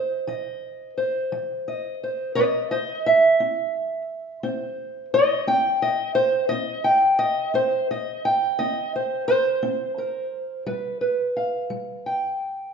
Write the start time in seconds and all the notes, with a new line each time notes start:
Already playing: C5 D#5
0.27 F3 D#5
0.98 C5
1.32 F3
1.68 D#5
2.03 C5
2.35 C4 C5 D#5
2.71 C5 D#5
3.06 E5
3.40 C4
4.43 C4 C5
5.14 D#5
5.47 C4 G5
5.82 D#5
6.15 C5
6.49 C4 D#5
6.84 G5
7.19 D#5
7.54 C4 C5
7.91 D#5
8.25 G5
8.59 C4 D#5
8.96 C5
9.28 C5
9.63 C4
9.98 A#4
10.66 G3 B4
11.01 B4
11.37 F5
11.70 G3
12.06 G5